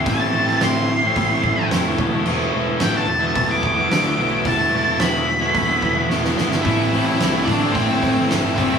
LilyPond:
<<
  \new Staff \with { instrumentName = "Lead electric guitar" } { \time 4/4 \key a \minor \tempo 4 = 109 a''4 c'''2 r4 | r4 g''16 a''4 d'''16 d'''4. | a''4 b''2 r4 | <e' e''>4. <d' d''>8 <c' c''>4 r8 <c' c''>8 | }
  \new Staff \with { instrumentName = "Distorted electric guitar" } { \time 4/4 \key a \minor <a, e a c' e'>8 <e a c' e'>8 <a, e a c' e'>16 <a c' e'>8 <a c' e'>8 <a c' e'>8 <a c' e'>16 <a, e a c' e'>16 <a c' e'>16 <e a b e'>16 <a b e'>16 | <e a b e'>8 <e a b e'>8 <e a b e'>16 <a b e'>8 <a b e'>8 <a b e'>8 <a b e'>16 <e a b e'>16 <a b e'>16 <e a b e'>16 <a b e'>16 | <e a b e'>8 <e a b e'>8 <e a b e'>16 <a b e'>8 <a b e'>8 <a b e'>8 <a b e'>16 <e a b e'>16 <a b e'>16 <e a b e'>16 <a b e'>16 | <a, e a c' e'>8 <e a c' e'>8 <a, e a c' e'>16 <a c' e'>8 <a c' e'>8 <a c' e'>8 <a c' e'>16 <a, e a c' e'>16 <a c' e'>16 <e a c' e'>16 <a c' e'>16 | }
  \new Staff \with { instrumentName = "Distorted electric guitar" } { \time 4/4 \key a \minor <a, e a c' e'>8 <e a c' e'>16 <a c' e'>16 <a, e a c' e'>4~ <a, e a c' e'>16 <a c' e'>16 <e a c' e'>8 <a, e a c' e'>8 <e a b e'>16 <a b e'>16 | <e a b e'>8 <e a b e'>16 <a b e'>16 <e a b e'>4~ <e a b e'>16 <a b e'>16 <e a b e'>8 <e a b e'>8 <e a b e'>16 <a b e'>16 | <e a b e'>8 <e a b e'>16 <a b e'>16 <e a b e'>4~ <e a b e'>16 <a b e'>16 <e a b e'>8 <e a b e'>8 <e a b e'>16 <a b e'>16 | <a, e a c' e'>8 <e a c' e'>16 <a c' e'>16 <a, e a c' e'>4~ <a, e a c' e'>16 <a c' e'>16 <e a c' e'>8 <a, e a c' e'>8 <e a c' e'>16 <a c' e'>16 | }
  \new Staff \with { instrumentName = "Distorted electric guitar" } { \clef bass \time 4/4 \key a \minor r1 | r1 | r1 | <a, e a>2.~ <a, e a>8 <a, e a>8 | }
  \new Staff \with { instrumentName = "Picked electric bass" } { \clef bass \time 4/4 \key a \minor a,,8 a,,8 a,,4 a,,8 a,,8 f,,8 e,,8 | e,,8 e,,8 a,,8 e,,8 e,,8 e,8 d,8 b,,8 | e,,8 e,,8 e,,4 e,,8 e,,8 e,,8 g,,8 | a,,8 a,,8 c,8 a,,8 a,,8 a,8 g,,8 e,8 | }
  \new DrumStaff \with { instrumentName = "Drums" } \drummode { \time 4/4 <hho bd>8. sn16 <hho sn>4 <hho bd>8 bd8 <hho sn>8 bd8 | cymc4 <hho sn>4 <hho bd>8 bd8 <hho sn>4 | <hho bd>4 <hho sn>4 <hho bd>8 bd8 sn16 sn16 sn16 sn16 | <hho bd>8 hho8 <hho sn>8 <hho bd>8 <hho bd>8 <hho bd>8 <hho sn>8 <hho bd>8 | }
>>